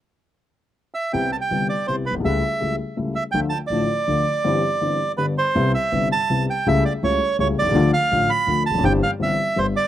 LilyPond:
<<
  \new Staff \with { instrumentName = "Bandoneon" } { \time 3/4 \key c \major \tempo 4 = 164 r2 r8 e''8 | g''8 a''16 g''8. d''8 c''8 b'8 | e''4. r4 e''8 | g''8 a''8 d''2~ |
d''2 b'8 c''8~ | c''8 e''4 a''4 g''8 | e''8 d''8 cis''4 cis''8 d''8~ | d''8 f''4 b''4 a''8 |
g''8 f''8 e''4 c''8 d''8 | }
  \new Staff \with { instrumentName = "Grand piano" } { \clef bass \time 3/4 \key c \major r2. | <c, c g b e'>8 r8 <g,, g, c g b e'>8 r8 <c, c g b e'>8 r32 bes,,32 b,,32 c,32 | <cis, cis g a e'>8 r8 <cis, cis g a e'>8 r8 <cis, cis g a e'>8 r8 | <d, d f a f'>8 r8 <a,, a, d f a f'>8 r8 <d, d f a f'>8 r8 |
<g,, g, e g c' g'>8 r8 <g,, g, e g c' g'>8 r8 <g,, g, d g b g'>8 r8 | <c, c g b e'>8 r8 <g,, g, c g b e'>8 r8 <c, c g b e'>8 r8 | <cis, cis g a e'>8 r8 <cis, cis g a e'>8 r8 <cis, cis g a e'>8 r32 b,,32 c,32 cis,32 | <d, d f a f'>8 r8 <a,, a, d f a f'>8 r8 <d, d f a f'>8 r32 e,32 f,32 fis,32 |
<g,, g, e g c' g'>8 r8 <g,, g, e g c' g'>8 r8 <g,, g, d g b g'>8 r8 | }
  \new Staff \with { instrumentName = "Upright bass" } { \clef bass \time 3/4 \key c \major r2. | c,16. r8 r32 g,,16. r8 r32 c,16. r16 bes,,32 b,,32 c,32 | cis,16. r8 r32 cis,16. r8 r32 cis,16. r8 r32 | d,16. r8 r32 a,,16. r8 r32 d,16. r8 r32 |
r2. | c,16. r8 r32 g,,16. r8 r32 c,16. r8 r32 | cis,16. r8 r32 cis,16. r8 r32 cis,16. r16 b,,32 c,32 cis,32 | d,16. r8 r32 a,,16. r8 r32 d,16. r16 e,,32 f,,32 fis,,32 |
g,,16. r8 r32 g,,16. r8 r32 g,,16. r8 r32 | }
>>